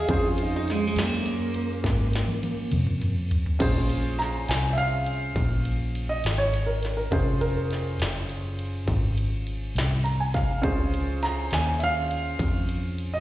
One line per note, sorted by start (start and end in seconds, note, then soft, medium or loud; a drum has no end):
0.00 0.11 G#4 medium
0.08 0.94 F2 medium
0.08 3.56 C#4 medium
0.08 3.56 F4 medium
0.08 3.57 G#4 medium
0.08 3.57 C5 medium
0.08 kick loud
0.08 ride medium
0.13 0.28 G#4 loud
0.28 0.43 F4 loud
0.38 ride medium
0.43 0.55 D#4 loud
0.56 0.69 D#4 loud
0.68 0.83 G#3 medium
0.68 snare soft
0.68 ride medium
0.88 1.02 G#3 medium
0.96 1.82 F#2 loud
0.96 snare loud
0.96 ride medium
1.02 2.71 A#3 loud
1.26 ride medium
1.54 ride medium
1.84 2.70 G#2 medium
1.84 kick loud
1.84 snare medium
1.84 ride medium
2.13 snare medium
2.13 ride medium
2.28 high tom medium
2.43 high tom medium
2.43 ride medium
2.72 3.58 F2 loud
2.72 mid tom loud
2.72 ride medium
2.87 mid tom medium
3.02 mid tom loud
3.02 ride medium
3.31 floor tom loud
3.31 ride medium
3.46 floor tom medium
3.59 4.46 A#1 medium
3.59 7.07 C#4 medium
3.59 7.08 F4 medium
3.59 7.08 G#4 medium
3.59 7.08 C5 medium
3.59 kick loud
3.59 crash loud
3.59 ride medium
3.89 ride medium
4.19 4.47 A#5 medium
4.19 snare soft
4.19 ride medium
4.49 5.34 C2 medium
4.49 4.77 G#5 medium
4.49 snare loud
4.49 ride medium
4.73 4.77 E5 medium
4.78 6.05 F5 loud
4.78 ride medium
5.06 ride medium
5.36 6.21 A#1 medium
5.36 kick medium
5.36 ride medium
5.65 ride medium
5.95 ride medium
6.09 6.38 D#5 medium
6.24 7.10 G#1 medium
6.24 snare loud
6.24 ride medium
6.38 6.67 C#5 loud
6.54 ride medium
6.66 6.95 A#4 medium
6.83 snare soft
6.83 ride medium
6.97 7.39 A#4 medium
7.11 7.97 F1 medium
7.11 10.59 C#4 medium
7.11 10.59 F4 soft
7.11 10.60 G#4 soft
7.11 10.60 C5 medium
7.11 kick loud
7.11 ride medium
7.41 7.98 A#4 medium
7.41 ride medium
7.71 snare soft
7.71 ride medium
8.00 8.85 F#1 medium
8.00 snare loud
8.00 ride medium
8.29 ride medium
8.59 ride medium
8.88 9.73 G#1 medium
8.88 kick loud
8.88 ride medium
9.18 ride medium
9.47 ride medium
9.75 10.61 C2 loud
9.75 snare loud
9.75 ride medium
10.04 10.18 A#5 medium
10.04 ride medium
10.20 10.34 G#5 medium
10.34 10.62 F5 medium
10.34 kick medium
10.34 snare soft
10.34 ride medium
10.62 11.49 C#2 loud
10.62 13.20 C#4 medium
10.62 13.20 F4 medium
10.62 13.20 G#4 medium
10.62 13.20 C5 medium
10.62 kick loud
10.62 ride medium
10.94 ride medium
11.23 11.51 A#5 loud
11.23 snare soft
11.23 ride medium
11.51 12.37 D#2 medium
11.51 11.81 G#5 loud
11.51 snare loud
11.51 ride medium
11.79 11.82 E5 medium
11.79 ride medium
11.84 13.10 F5 loud
12.11 ride medium
12.39 13.20 F2 medium
12.39 kick medium
12.39 ride medium
12.69 ride medium
12.98 ride medium
13.14 13.20 D#5 medium